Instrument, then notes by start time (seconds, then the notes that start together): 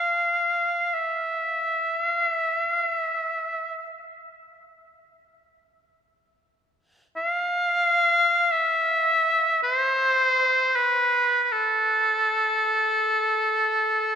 oboe
Already playing: F5
0.94 E5
2.05 F5
2.28 E5
2.66 F5
2.89 E5
7.17 F5
8.51 E5
9.63 C5
10.76 B4
11.43 B4
11.52 A4